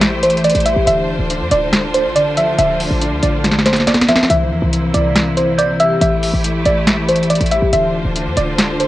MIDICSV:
0, 0, Header, 1, 7, 480
1, 0, Start_track
1, 0, Key_signature, -1, "minor"
1, 0, Tempo, 428571
1, 976, Time_signature, 4, 2, 24, 8
1, 9941, End_track
2, 0, Start_track
2, 0, Title_t, "Synth bell"
2, 0, Program_c, 0, 98
2, 6249, Note_on_c, 0, 91, 89
2, 6480, Note_off_c, 0, 91, 0
2, 6496, Note_on_c, 0, 88, 84
2, 6724, Note_off_c, 0, 88, 0
2, 9941, End_track
3, 0, Start_track
3, 0, Title_t, "Synth pluck"
3, 0, Program_c, 1, 84
3, 0, Note_on_c, 1, 74, 85
3, 227, Note_off_c, 1, 74, 0
3, 257, Note_on_c, 1, 72, 74
3, 481, Note_off_c, 1, 72, 0
3, 497, Note_on_c, 1, 74, 84
3, 721, Note_off_c, 1, 74, 0
3, 737, Note_on_c, 1, 76, 88
3, 961, Note_off_c, 1, 76, 0
3, 977, Note_on_c, 1, 76, 99
3, 1427, Note_off_c, 1, 76, 0
3, 1696, Note_on_c, 1, 74, 94
3, 2147, Note_off_c, 1, 74, 0
3, 2176, Note_on_c, 1, 72, 73
3, 2401, Note_off_c, 1, 72, 0
3, 2416, Note_on_c, 1, 74, 81
3, 2641, Note_off_c, 1, 74, 0
3, 2657, Note_on_c, 1, 76, 90
3, 2881, Note_off_c, 1, 76, 0
3, 2896, Note_on_c, 1, 76, 100
3, 3347, Note_off_c, 1, 76, 0
3, 3616, Note_on_c, 1, 74, 84
3, 4067, Note_off_c, 1, 74, 0
3, 4095, Note_on_c, 1, 72, 79
3, 4321, Note_off_c, 1, 72, 0
3, 4337, Note_on_c, 1, 74, 77
3, 4561, Note_off_c, 1, 74, 0
3, 4577, Note_on_c, 1, 76, 89
3, 4801, Note_off_c, 1, 76, 0
3, 4817, Note_on_c, 1, 76, 98
3, 5267, Note_off_c, 1, 76, 0
3, 5535, Note_on_c, 1, 74, 87
3, 5986, Note_off_c, 1, 74, 0
3, 6015, Note_on_c, 1, 72, 73
3, 6241, Note_off_c, 1, 72, 0
3, 6256, Note_on_c, 1, 74, 88
3, 6481, Note_off_c, 1, 74, 0
3, 6496, Note_on_c, 1, 76, 98
3, 6721, Note_off_c, 1, 76, 0
3, 6735, Note_on_c, 1, 76, 105
3, 7186, Note_off_c, 1, 76, 0
3, 7456, Note_on_c, 1, 74, 88
3, 7907, Note_off_c, 1, 74, 0
3, 7935, Note_on_c, 1, 72, 75
3, 8160, Note_off_c, 1, 72, 0
3, 8174, Note_on_c, 1, 74, 86
3, 8400, Note_off_c, 1, 74, 0
3, 8416, Note_on_c, 1, 76, 87
3, 8641, Note_off_c, 1, 76, 0
3, 8655, Note_on_c, 1, 76, 100
3, 9107, Note_off_c, 1, 76, 0
3, 9375, Note_on_c, 1, 74, 93
3, 9827, Note_off_c, 1, 74, 0
3, 9856, Note_on_c, 1, 72, 73
3, 9941, Note_off_c, 1, 72, 0
3, 9941, End_track
4, 0, Start_track
4, 0, Title_t, "String section"
4, 0, Program_c, 2, 48
4, 0, Note_on_c, 2, 57, 83
4, 0, Note_on_c, 2, 64, 78
4, 0, Note_on_c, 2, 67, 78
4, 0, Note_on_c, 2, 72, 91
4, 937, Note_off_c, 2, 64, 0
4, 956, Note_off_c, 2, 67, 0
4, 957, Note_off_c, 2, 57, 0
4, 977, Note_on_c, 2, 50, 87
4, 977, Note_on_c, 2, 62, 78
4, 977, Note_on_c, 2, 65, 74
4, 4778, Note_off_c, 2, 50, 0
4, 4778, Note_off_c, 2, 62, 0
4, 4778, Note_off_c, 2, 65, 0
4, 4816, Note_on_c, 2, 48, 82
4, 4816, Note_on_c, 2, 58, 75
4, 4816, Note_on_c, 2, 64, 75
4, 6717, Note_off_c, 2, 48, 0
4, 6717, Note_off_c, 2, 58, 0
4, 6717, Note_off_c, 2, 64, 0
4, 6735, Note_on_c, 2, 57, 85
4, 6735, Note_on_c, 2, 64, 78
4, 6735, Note_on_c, 2, 67, 77
4, 8611, Note_off_c, 2, 72, 0
4, 8636, Note_off_c, 2, 57, 0
4, 8636, Note_off_c, 2, 64, 0
4, 8636, Note_off_c, 2, 67, 0
4, 8655, Note_on_c, 2, 50, 84
4, 8655, Note_on_c, 2, 62, 75
4, 8655, Note_on_c, 2, 65, 75
4, 8656, Note_on_c, 2, 72, 91
4, 9941, Note_off_c, 2, 50, 0
4, 9941, Note_off_c, 2, 62, 0
4, 9941, Note_off_c, 2, 65, 0
4, 9941, Note_off_c, 2, 72, 0
4, 9941, End_track
5, 0, Start_track
5, 0, Title_t, "Harp"
5, 0, Program_c, 3, 46
5, 0, Note_on_c, 3, 57, 81
5, 0, Note_on_c, 3, 64, 90
5, 15, Note_on_c, 3, 52, 96
5, 250, Note_off_c, 3, 57, 0
5, 255, Note_on_c, 3, 57, 86
5, 481, Note_off_c, 3, 52, 0
5, 494, Note_on_c, 3, 52, 87
5, 737, Note_on_c, 3, 55, 89
5, 976, Note_on_c, 3, 50, 92
5, 1032, Note_off_c, 3, 52, 0
5, 1032, Note_off_c, 3, 55, 0
5, 1210, Note_off_c, 3, 57, 0
5, 1214, Note_on_c, 3, 57, 78
5, 1459, Note_on_c, 3, 62, 96
5, 1690, Note_off_c, 3, 62, 0
5, 1694, Note_on_c, 3, 62, 84
5, 1921, Note_off_c, 3, 50, 0
5, 1934, Note_on_c, 3, 50, 91
5, 2171, Note_off_c, 3, 57, 0
5, 2175, Note_on_c, 3, 57, 93
5, 2405, Note_off_c, 3, 50, 0
5, 2419, Note_on_c, 3, 50, 92
5, 2656, Note_on_c, 3, 53, 86
5, 2723, Note_off_c, 3, 64, 0
5, 2881, Note_off_c, 3, 50, 0
5, 2894, Note_on_c, 3, 50, 99
5, 2951, Note_off_c, 3, 53, 0
5, 3130, Note_off_c, 3, 57, 0
5, 3135, Note_on_c, 3, 57, 87
5, 3373, Note_off_c, 3, 62, 0
5, 3377, Note_on_c, 3, 62, 101
5, 3610, Note_off_c, 3, 62, 0
5, 3614, Note_on_c, 3, 62, 92
5, 3841, Note_off_c, 3, 50, 0
5, 3855, Note_on_c, 3, 50, 86
5, 4089, Note_off_c, 3, 57, 0
5, 4093, Note_on_c, 3, 57, 90
5, 4319, Note_off_c, 3, 50, 0
5, 4332, Note_on_c, 3, 50, 85
5, 4576, Note_on_c, 3, 53, 89
5, 4816, Note_on_c, 3, 52, 100
5, 4871, Note_off_c, 3, 50, 0
5, 4871, Note_off_c, 3, 53, 0
5, 5058, Note_on_c, 3, 58, 82
5, 5125, Note_off_c, 3, 57, 0
5, 5291, Note_on_c, 3, 64, 89
5, 5528, Note_off_c, 3, 64, 0
5, 5533, Note_on_c, 3, 64, 85
5, 5761, Note_off_c, 3, 52, 0
5, 5774, Note_on_c, 3, 52, 83
5, 6011, Note_off_c, 3, 58, 0
5, 6015, Note_on_c, 3, 58, 84
5, 6241, Note_off_c, 3, 52, 0
5, 6254, Note_on_c, 3, 52, 81
5, 6491, Note_on_c, 3, 55, 90
5, 6718, Note_off_c, 3, 52, 0
5, 6732, Note_on_c, 3, 52, 91
5, 6749, Note_off_c, 3, 62, 0
5, 6791, Note_off_c, 3, 55, 0
5, 6974, Note_on_c, 3, 57, 81
5, 7041, Note_off_c, 3, 58, 0
5, 7210, Note_off_c, 3, 64, 0
5, 7215, Note_on_c, 3, 64, 100
5, 7452, Note_off_c, 3, 64, 0
5, 7457, Note_on_c, 3, 64, 92
5, 7682, Note_off_c, 3, 52, 0
5, 7695, Note_on_c, 3, 52, 93
5, 7930, Note_off_c, 3, 57, 0
5, 7935, Note_on_c, 3, 57, 84
5, 8161, Note_off_c, 3, 52, 0
5, 8174, Note_on_c, 3, 52, 88
5, 8417, Note_on_c, 3, 55, 85
5, 8656, Note_on_c, 3, 50, 97
5, 8711, Note_off_c, 3, 52, 0
5, 8711, Note_off_c, 3, 55, 0
5, 8889, Note_off_c, 3, 57, 0
5, 8894, Note_on_c, 3, 57, 79
5, 9139, Note_on_c, 3, 62, 92
5, 9370, Note_off_c, 3, 62, 0
5, 9375, Note_on_c, 3, 62, 84
5, 9600, Note_off_c, 3, 50, 0
5, 9613, Note_on_c, 3, 50, 91
5, 9850, Note_off_c, 3, 57, 0
5, 9855, Note_on_c, 3, 57, 94
5, 9941, Note_off_c, 3, 50, 0
5, 9941, Note_off_c, 3, 57, 0
5, 9941, Note_off_c, 3, 62, 0
5, 9941, Note_off_c, 3, 64, 0
5, 9941, End_track
6, 0, Start_track
6, 0, Title_t, "808-style bass"
6, 0, Program_c, 4, 38
6, 0, Note_on_c, 4, 33, 105
6, 582, Note_off_c, 4, 33, 0
6, 615, Note_on_c, 4, 33, 105
6, 846, Note_off_c, 4, 33, 0
6, 856, Note_on_c, 4, 33, 102
6, 971, Note_off_c, 4, 33, 0
6, 975, Note_on_c, 4, 26, 110
6, 1216, Note_on_c, 4, 28, 99
6, 1233, Note_off_c, 4, 26, 0
6, 1330, Note_off_c, 4, 28, 0
6, 1336, Note_on_c, 4, 26, 105
6, 1576, Note_on_c, 4, 41, 100
6, 1593, Note_off_c, 4, 26, 0
6, 1690, Note_off_c, 4, 41, 0
6, 1696, Note_on_c, 4, 26, 111
6, 2296, Note_on_c, 4, 33, 100
6, 2313, Note_off_c, 4, 26, 0
6, 2866, Note_off_c, 4, 33, 0
6, 2896, Note_on_c, 4, 26, 117
6, 3241, Note_off_c, 4, 26, 0
6, 3255, Note_on_c, 4, 33, 100
6, 3495, Note_on_c, 4, 38, 102
6, 3512, Note_off_c, 4, 33, 0
6, 3609, Note_off_c, 4, 38, 0
6, 3615, Note_on_c, 4, 33, 108
6, 4771, Note_off_c, 4, 33, 0
6, 4816, Note_on_c, 4, 36, 112
6, 5055, Note_on_c, 4, 40, 99
6, 5072, Note_off_c, 4, 36, 0
6, 5169, Note_off_c, 4, 40, 0
6, 5175, Note_on_c, 4, 36, 104
6, 5521, Note_off_c, 4, 36, 0
6, 5535, Note_on_c, 4, 36, 105
6, 6691, Note_off_c, 4, 36, 0
6, 6736, Note_on_c, 4, 33, 118
6, 7081, Note_off_c, 4, 33, 0
6, 7095, Note_on_c, 4, 33, 100
6, 7441, Note_off_c, 4, 33, 0
6, 7455, Note_on_c, 4, 33, 104
6, 8262, Note_off_c, 4, 33, 0
6, 8295, Note_on_c, 4, 33, 107
6, 8526, Note_off_c, 4, 33, 0
6, 8535, Note_on_c, 4, 33, 103
6, 8651, Note_off_c, 4, 33, 0
6, 8656, Note_on_c, 4, 26, 113
6, 8896, Note_on_c, 4, 28, 98
6, 8913, Note_off_c, 4, 26, 0
6, 9010, Note_off_c, 4, 28, 0
6, 9016, Note_on_c, 4, 26, 108
6, 9256, Note_on_c, 4, 41, 101
6, 9273, Note_off_c, 4, 26, 0
6, 9370, Note_off_c, 4, 41, 0
6, 9376, Note_on_c, 4, 26, 113
6, 9941, Note_off_c, 4, 26, 0
6, 9941, End_track
7, 0, Start_track
7, 0, Title_t, "Drums"
7, 15, Note_on_c, 9, 38, 124
7, 16, Note_on_c, 9, 42, 88
7, 127, Note_off_c, 9, 38, 0
7, 128, Note_off_c, 9, 42, 0
7, 256, Note_on_c, 9, 42, 78
7, 336, Note_off_c, 9, 42, 0
7, 336, Note_on_c, 9, 42, 62
7, 416, Note_off_c, 9, 42, 0
7, 416, Note_on_c, 9, 42, 46
7, 496, Note_off_c, 9, 42, 0
7, 496, Note_on_c, 9, 42, 81
7, 556, Note_off_c, 9, 42, 0
7, 556, Note_on_c, 9, 42, 71
7, 616, Note_off_c, 9, 42, 0
7, 616, Note_on_c, 9, 42, 62
7, 676, Note_off_c, 9, 42, 0
7, 676, Note_on_c, 9, 42, 48
7, 736, Note_off_c, 9, 42, 0
7, 736, Note_on_c, 9, 42, 85
7, 848, Note_off_c, 9, 42, 0
7, 976, Note_on_c, 9, 42, 86
7, 1088, Note_off_c, 9, 42, 0
7, 1457, Note_on_c, 9, 42, 84
7, 1569, Note_off_c, 9, 42, 0
7, 1694, Note_on_c, 9, 42, 72
7, 1806, Note_off_c, 9, 42, 0
7, 1935, Note_on_c, 9, 38, 122
7, 1937, Note_on_c, 9, 42, 82
7, 2047, Note_off_c, 9, 38, 0
7, 2049, Note_off_c, 9, 42, 0
7, 2176, Note_on_c, 9, 42, 76
7, 2288, Note_off_c, 9, 42, 0
7, 2417, Note_on_c, 9, 42, 77
7, 2529, Note_off_c, 9, 42, 0
7, 2655, Note_on_c, 9, 42, 85
7, 2767, Note_off_c, 9, 42, 0
7, 2896, Note_on_c, 9, 42, 87
7, 3008, Note_off_c, 9, 42, 0
7, 3137, Note_on_c, 9, 46, 81
7, 3249, Note_off_c, 9, 46, 0
7, 3377, Note_on_c, 9, 42, 80
7, 3489, Note_off_c, 9, 42, 0
7, 3614, Note_on_c, 9, 42, 71
7, 3726, Note_off_c, 9, 42, 0
7, 3855, Note_on_c, 9, 38, 68
7, 3857, Note_on_c, 9, 42, 85
7, 3936, Note_off_c, 9, 38, 0
7, 3936, Note_on_c, 9, 38, 60
7, 3969, Note_off_c, 9, 42, 0
7, 4016, Note_off_c, 9, 38, 0
7, 4016, Note_on_c, 9, 38, 76
7, 4096, Note_off_c, 9, 38, 0
7, 4096, Note_on_c, 9, 38, 68
7, 4096, Note_on_c, 9, 42, 76
7, 4175, Note_off_c, 9, 38, 0
7, 4175, Note_on_c, 9, 38, 83
7, 4208, Note_off_c, 9, 42, 0
7, 4215, Note_on_c, 9, 42, 47
7, 4255, Note_off_c, 9, 38, 0
7, 4255, Note_on_c, 9, 38, 77
7, 4327, Note_off_c, 9, 42, 0
7, 4335, Note_off_c, 9, 38, 0
7, 4335, Note_on_c, 9, 38, 97
7, 4335, Note_on_c, 9, 42, 66
7, 4415, Note_off_c, 9, 38, 0
7, 4415, Note_off_c, 9, 42, 0
7, 4415, Note_on_c, 9, 38, 85
7, 4415, Note_on_c, 9, 42, 67
7, 4495, Note_off_c, 9, 38, 0
7, 4495, Note_off_c, 9, 42, 0
7, 4495, Note_on_c, 9, 38, 104
7, 4495, Note_on_c, 9, 42, 66
7, 4575, Note_off_c, 9, 38, 0
7, 4575, Note_off_c, 9, 42, 0
7, 4575, Note_on_c, 9, 38, 90
7, 4575, Note_on_c, 9, 42, 86
7, 4655, Note_off_c, 9, 38, 0
7, 4655, Note_on_c, 9, 38, 114
7, 4687, Note_off_c, 9, 42, 0
7, 4735, Note_off_c, 9, 38, 0
7, 4735, Note_on_c, 9, 38, 98
7, 4815, Note_on_c, 9, 42, 87
7, 4847, Note_off_c, 9, 38, 0
7, 4927, Note_off_c, 9, 42, 0
7, 5296, Note_on_c, 9, 42, 80
7, 5408, Note_off_c, 9, 42, 0
7, 5533, Note_on_c, 9, 42, 70
7, 5645, Note_off_c, 9, 42, 0
7, 5775, Note_on_c, 9, 38, 119
7, 5776, Note_on_c, 9, 42, 86
7, 5887, Note_off_c, 9, 38, 0
7, 5888, Note_off_c, 9, 42, 0
7, 6016, Note_on_c, 9, 42, 75
7, 6128, Note_off_c, 9, 42, 0
7, 6256, Note_on_c, 9, 42, 77
7, 6368, Note_off_c, 9, 42, 0
7, 6494, Note_on_c, 9, 42, 84
7, 6606, Note_off_c, 9, 42, 0
7, 6735, Note_on_c, 9, 42, 83
7, 6847, Note_off_c, 9, 42, 0
7, 6977, Note_on_c, 9, 46, 81
7, 7089, Note_off_c, 9, 46, 0
7, 7216, Note_on_c, 9, 42, 86
7, 7328, Note_off_c, 9, 42, 0
7, 7453, Note_on_c, 9, 42, 70
7, 7565, Note_off_c, 9, 42, 0
7, 7695, Note_on_c, 9, 38, 121
7, 7696, Note_on_c, 9, 42, 86
7, 7807, Note_off_c, 9, 38, 0
7, 7808, Note_off_c, 9, 42, 0
7, 7935, Note_on_c, 9, 42, 77
7, 8015, Note_off_c, 9, 42, 0
7, 8015, Note_on_c, 9, 42, 63
7, 8095, Note_off_c, 9, 42, 0
7, 8095, Note_on_c, 9, 42, 46
7, 8175, Note_off_c, 9, 42, 0
7, 8175, Note_on_c, 9, 42, 81
7, 8235, Note_off_c, 9, 42, 0
7, 8235, Note_on_c, 9, 42, 69
7, 8295, Note_off_c, 9, 42, 0
7, 8295, Note_on_c, 9, 42, 59
7, 8355, Note_off_c, 9, 42, 0
7, 8355, Note_on_c, 9, 42, 47
7, 8415, Note_off_c, 9, 42, 0
7, 8415, Note_on_c, 9, 42, 83
7, 8527, Note_off_c, 9, 42, 0
7, 8655, Note_on_c, 9, 42, 86
7, 8767, Note_off_c, 9, 42, 0
7, 9136, Note_on_c, 9, 42, 84
7, 9248, Note_off_c, 9, 42, 0
7, 9373, Note_on_c, 9, 42, 69
7, 9485, Note_off_c, 9, 42, 0
7, 9615, Note_on_c, 9, 38, 120
7, 9616, Note_on_c, 9, 42, 88
7, 9727, Note_off_c, 9, 38, 0
7, 9728, Note_off_c, 9, 42, 0
7, 9856, Note_on_c, 9, 42, 76
7, 9941, Note_off_c, 9, 42, 0
7, 9941, End_track
0, 0, End_of_file